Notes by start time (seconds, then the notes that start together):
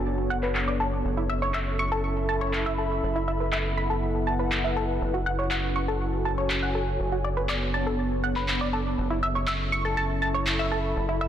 Already playing: F#1 B3 D4 F#4 A4 C#5
0.30 F#5
0.43 B4, clap
0.55 clap
0.68 D5
0.80 A4
1.05 F#1 C#4 E4 A4
1.17 E4
1.29 E5
1.42 C#5
1.54 E5, clap
1.79 C#6
1.92 A4 B5
2.29 A5
2.41 C#5
2.53 clap
2.66 E5
2.78 A4
3.03 F#1 B3 E4
3.16 E4
3.28 E5 F#5
3.40 B4
3.52 E5, clap
3.77 B5
3.90 A4 B4
4.27 A5
4.39 B4
4.52 clap
4.64 E5
4.76 A4
5.01 F#1 C#4 F#4 A4
5.14 F#4
5.26 F#5
5.39 C#5
5.51 F#5, clap
5.76 C#6
5.88 A4 C#5 G#5
6.25 A5
6.38 C#5
6.50 clap
6.63 F#5
6.75 A4
7.00 F#1 B3 D4
7.12 F#4
7.24 D5
7.37 B4
7.49 D5, clap
7.74 A5
7.87 A4
8.24 F#5
8.36 B4, clap
8.48 clap
8.61 D5
8.73 A4
8.98 F#1 C#4 E4 A4
9.09 E4 E5
9.23 E5
9.35 C#5
9.47 E5, clap
9.72 C#6
9.85 A4 B5
9.97 A5
10.22 A5
10.34 C#5
10.47 clap
10.59 E5
10.71 A4
10.96 F#1 B3 E4
11.09 E4
11.21 E5